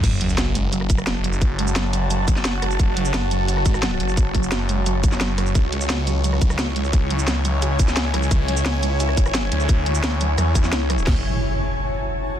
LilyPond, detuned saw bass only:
\new Staff \with { instrumentName = "Detuned saw bass" } { \clef bass \time 4/4 \key fis \minor \tempo 4 = 174 fis,,2~ fis,,8 fis,,4.~ | fis,,2~ fis,,8 fis,,4 fis,,8 | fis,,2~ fis,,8 gis,,4 fis,,8~ | fis,,4 fis,,4. fis,,4. |
cis,2~ cis,8 cis,4.~ | cis,2~ cis,8 cis,4 cis,8 | cis,2~ cis,8 gis,,4 d,8~ | d,2 e,4 cis,4 |
fis,,8 r2. r8 | }